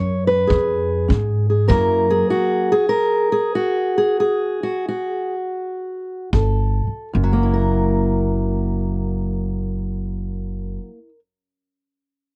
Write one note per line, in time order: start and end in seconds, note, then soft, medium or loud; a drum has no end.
0.00 0.48 F#2 medium
0.00 0.46 C#4 medium
0.00 0.27 C#5 loud
0.27 1.08 B4 loud
0.47 1.08 F2 medium
0.47 1.05 C#3 medium
0.47 1.48 G#4 medium
0.47 kick medium
1.08 1.68 G#2 medium
1.08 1.65 C#4 medium
1.08 kick medium
1.50 1.67 G#4 medium
1.68 2.21 F#2 medium
1.68 2.20 F#2 medium
1.68 2.75 F#3 soft
1.68 2.75 A#3 medium
1.68 2.10 E4 medium
1.68 2.29 A#4 loud
1.68 kick medium
2.10 2.71 G#4 medium
2.30 2.89 F#4 medium
2.72 3.31 G#4 loud
2.89 3.53 A#4 loud
3.32 3.97 G#4 loud
3.55 4.62 F#4 medium
3.98 4.19 G#4 medium
4.20 5.34 G#4 medium
4.63 4.86 F#4 medium
4.89 6.33 F#4 medium
6.33 6.82 G1 medium
6.33 7.08 G2 medium
6.33 7.11 A4 medium
6.33 kick medium
6.87 muted upright bass stroke soft
7.13 10.76 F#1 loud
7.13 10.79 F#2 medium
7.24 10.89 F#3 medium
7.33 10.98 A#3 medium
7.43 11.09 E4 medium
7.53 11.19 A#4 medium